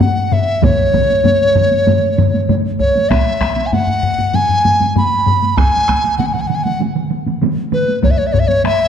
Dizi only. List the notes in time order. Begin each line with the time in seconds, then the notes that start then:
0.01 F#5
0.33 E5
0.64 C#5
2.79 C#5
3.09 E5
3.67 G#5
3.73 F#5
4.35 G#5
4.97 B5
5.57 G#5
6.18 F#5
6.26 G#5
6.33 F#5
6.41 G#5
6.47 F#5
6.55 G#5
6.64 F#5
7.73 B4
8.03 C#5
8.11 E5
8.18 C#5
8.27 E5
8.33 C#5
8.39 E5
8.48 C#5
8.66 E5